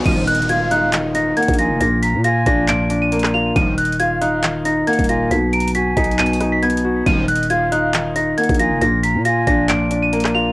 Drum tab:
CC |x-----------------------------------------------------------------------------------------------|------------------------------------------------------------------------------------------------|------------------------------------------------------------------------------------------------|------------------------------------------------------------------------------------------------|
HH |x-----------x---x---x---x-----------x-----------x-----------x-----------x--x--x--x--x-----------|x-----------x-----------x-----------x-----------x-----------x-----------x---x---x---------------|x-----------x---x---x---x-----------x-----------x-----------x-----------x--x--x--x--x-----------|x-----------x---x---x---x-----------x---x---x---x---x---x---x-----------x---x---x---------------|
CP |------------------------------------------------x-----------------------------------------------|------------------------------------------------x-----------------------------x-----------------|------------------------------------------------x-----------------------------------------------|------------------------------------------------x-----------------------------------------------|
SD |------------------------------------------------------------------------------------------------|------------------------------------------------------------------------------r-----------------|------------------------------------------------------------------------------------------------|------------------------------------------------------------r-----------------------------------|
BD |o-----------------------------------------------------------------------------o-----------------|------------------------------------o-----------------------------------------------------------|o-----------------------------------------------------------------------------o-----------------|------------------------------------o-----------------------------------------------------------|

CC |------------------------------------------------------------------------------------------------|------------------------------------------------------------------------------------------------|
HH |x-----------x---x---x---x-----------x-----------x-----------x-----------x--x--x--x--x-----------|x-----------x-----------x-----------x-----------x-----------x-----------x---x---x---------------|
CP |------------------------------------------------x-----------------------------------------------|------------------------------------------------x-----------------------------x-----------------|
SD |------------------------------------------------------------------------------------------------|------------------------------------------------------------------------------r-----------------|
BD |o-----------------------------------------------------------------------------o-----------------|------------------------------------o-----------------------------------------------------------|